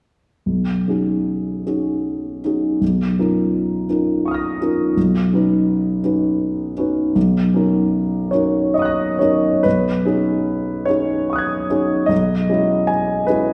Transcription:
0.46 0.86 B1 soft
0.88 1.64 C#4 soft
0.88 1.64 D#4 soft
0.88 1.64 F#4 soft
0.88 1.64 G#4 soft
1.67 2.40 C#4 soft
1.67 2.40 D#4 soft
1.67 2.40 F#4 soft
1.67 2.40 G#4 soft
2.44 2.78 C#4 soft
2.44 2.78 D#4 soft
2.44 2.78 F#4 soft
2.44 2.78 G#4 soft
2.81 3.16 B1 soft
3.19 3.86 C#4 soft
3.19 3.86 D#4 soft
3.19 3.86 F4 soft
3.19 3.86 A#4 soft
3.90 4.57 C#4 soft
3.90 4.57 D#4 soft
3.90 4.57 F4 soft
3.90 4.58 A#4 soft
4.25 4.93 C#6 soft
4.25 4.94 D#6 soft
4.31 4.96 F6 soft
4.31 4.97 A#6 soft
4.61 4.93 C#4 soft
4.61 4.93 D#4 soft
4.61 4.93 F4 soft
4.61 4.94 A#4 soft
4.97 5.31 B1 soft
5.33 6.00 C#4 soft
5.33 6.00 D#4 soft
5.33 6.00 F#4 soft
5.33 6.01 B4 soft
6.04 6.73 C#4 soft
6.04 6.73 D#4 soft
6.04 6.73 F#4 soft
6.04 6.73 B4 soft
6.78 7.12 C#4 soft
6.78 7.13 D#4 soft
6.78 7.13 F#4 soft
6.78 7.13 B4 soft
7.15 7.53 B1 soft
7.54 8.29 C#4 soft
7.54 8.29 D#4 soft
7.54 8.30 F#4 soft
7.54 8.30 A#4 soft
8.31 9.17 C#4 soft
8.31 9.17 D#4 soft
8.31 9.17 F#4 soft
8.31 9.18 A#4 soft
8.31 8.74 C#5 medium
8.74 9.20 D#5 medium
8.74 9.61 C#6 soft
8.79 9.63 D#6 soft
8.79 9.64 F#6 soft
8.85 9.66 A#6 soft
9.19 9.61 C#4 soft
9.19 9.61 D#4 soft
9.19 9.61 F#4 soft
9.19 9.61 A#4 soft
9.19 9.64 C#5 medium
9.63 10.05 B1 soft
9.63 10.88 B4 medium
10.05 10.85 C#4 soft
10.05 10.85 D#4 soft
10.05 10.85 F#4 soft
10.05 10.85 G#4 soft
10.85 11.66 C#4 soft
10.85 11.66 D#4 soft
10.85 11.67 F#4 soft
10.85 11.67 G#4 soft
10.85 12.09 C#5 medium
11.30 12.06 C#6 soft
11.30 12.08 D#6 soft
11.36 12.09 F#6 soft
11.36 12.11 G#6 soft
11.70 12.06 C#4 soft
11.70 12.06 D#4 soft
11.70 12.06 F#4 soft
11.70 12.07 G#4 soft
12.06 12.48 B1 soft
12.06 12.88 D#5 medium
12.49 13.24 G#3 soft
12.49 13.24 C#4 soft
12.49 13.25 E4 soft
12.49 13.25 F#4 soft
12.87 13.28 G#5 medium
13.27 13.53 G#3 soft
13.27 13.53 C#4 soft
13.27 13.53 E4 soft
13.27 13.53 F#4 soft
13.27 13.53 B4 medium

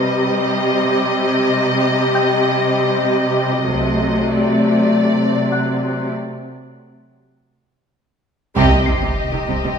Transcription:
0.00 3.62 C3 medium
0.00 3.62 G3 medium
0.00 3.62 G4 medium
0.00 1.48 B4 soft
0.00 4.28 D#5 soft
0.00 0.25 F#5 soft
0.00 1.49 B5 soft
2.15 3.94 G5 soft
2.15 3.94 G6 soft
3.66 4.24 C2 soft
3.66 6.08 C3 soft
3.66 6.07 F#3 soft
3.66 6.11 A3 soft
4.29 6.12 D5 soft
5.52 6.08 F#5 soft
5.52 6.08 F#6 soft
8.56 8.71 C2 medium
8.56 8.71 C3 medium
8.56 8.71 G3 medium
8.56 9.79 G4 soft
8.56 9.79 D#5 soft
8.56 sub drop soft
8.72 8.78 C3 soft
8.72 8.78 G3 soft
8.86 8.94 C2 soft
8.86 8.93 C3 soft
8.86 8.93 D#3 soft
8.86 9.79 C7 soft
9.02 9.08 C3 soft
9.02 9.08 G3 soft
9.31 9.39 C3 soft
9.31 9.38 D#3 soft
9.47 9.55 C2 soft
9.47 9.54 C3 soft
9.47 9.53 G3 soft
9.64 9.70 C3 soft
9.64 9.70 G3 soft

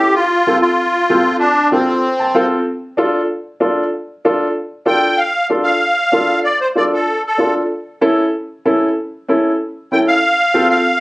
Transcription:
0.00 0.14 G4 medium
0.14 0.58 F4 loud
0.47 0.69 C4 medium
0.47 0.69 F4 medium
0.47 0.69 A4 medium
0.62 1.36 F4 loud
1.10 1.32 C4 medium
1.10 1.32 F4 medium
1.10 1.32 A4 medium
1.39 1.69 D4 medium
1.71 2.46 C4 medium
1.71 1.94 C4 medium
1.71 1.94 F4 medium
1.71 1.94 A4 medium
2.20 2.34 A5 medium
2.35 2.57 C4 medium
2.35 2.57 F4 medium
2.35 2.57 A4 medium
2.35 2.64 F5 medium
2.97 3.20 D4 medium
2.97 3.20 F4 medium
2.97 3.20 A4 medium
3.60 3.83 D4 medium
3.60 3.83 F4 medium
3.60 3.83 A4 medium
4.25 4.46 D4 medium
4.25 4.46 F4 medium
4.25 4.47 A4 medium
4.86 5.08 D4 medium
4.86 5.08 F4 medium
4.86 5.09 A4 medium
4.86 5.19 G5 medium
5.17 5.47 F5 medium
5.50 5.72 D4 medium
5.50 5.72 F4 medium
5.50 5.72 A4 medium
5.64 6.40 F5 medium
6.12 6.35 D4 medium
6.12 6.35 F4 medium
6.12 6.35 A4 medium
6.44 6.59 D5 medium
6.61 6.68 C5 medium
6.75 6.98 D4 medium
6.75 6.98 F4 medium
6.75 6.98 A4 medium
6.75 6.84 D5 medium
6.94 7.22 A4 medium
7.27 7.54 A4 medium
7.38 7.61 D4 medium
7.38 7.61 F4 medium
7.38 7.61 A4 medium
8.01 8.24 C#4 medium
8.01 8.24 E4 medium
8.01 8.24 A4 medium
8.65 8.87 C#4 medium
8.65 8.88 E4 medium
8.65 8.88 A4 medium
9.28 9.50 C#4 medium
9.28 9.51 E4 medium
9.28 9.51 A4 medium
9.92 10.14 C#4 medium
9.92 10.14 E4 medium
9.92 10.14 A4 medium
9.92 9.99 G5 medium
10.07 10.68 F5 loud
10.54 10.76 C4 medium
10.54 10.77 F4 medium
10.54 10.77 A4 medium
10.70 11.00 F5 medium

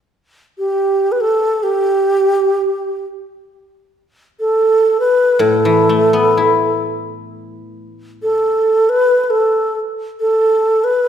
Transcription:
0.58 1.13 G4 medium
1.12 1.22 B4 medium
1.21 1.65 A4 medium
1.63 3.06 G4 medium
4.40 4.98 A4 medium
5.00 5.42 B4 medium
5.39 8.32 A2 soft
5.39 6.85 A4 medium
5.65 7.59 E3 soft
5.89 7.84 A3 soft
6.13 8.08 B3 soft
6.37 8.33 E4 soft
8.23 8.91 A4 medium
8.89 9.24 B4 medium
9.24 9.32 B4 soft
9.30 9.79 A4 medium
10.20 10.86 A4 medium
10.84 11.08 B4 medium

